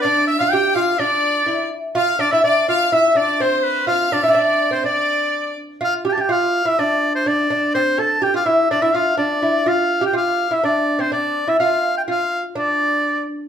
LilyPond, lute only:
\new Staff \with { instrumentName = "Lute" } { \time 2/4 \key d \minor \tempo 4 = 124 d'8. f'16 g'8 f'8 | d'4 e'8 r8 | f'8 d'16 e'16 d'8 f'8 | e'8 d'8 c'4 |
f'8 d'16 e'32 e'32 d'8. c'16 | d'4. r8 | f'8 g'16 g'16 f'8. e'16 | d'4 d'8 d'8 |
c'8 a'8 g'16 f'16 e'8 | d'16 e'16 f'8 d'8 e'8 | f'8. g'16 f'8. e'16 | d'8. c'16 d'8. e'16 |
f'4 f'8. r16 | d'4. r8 | }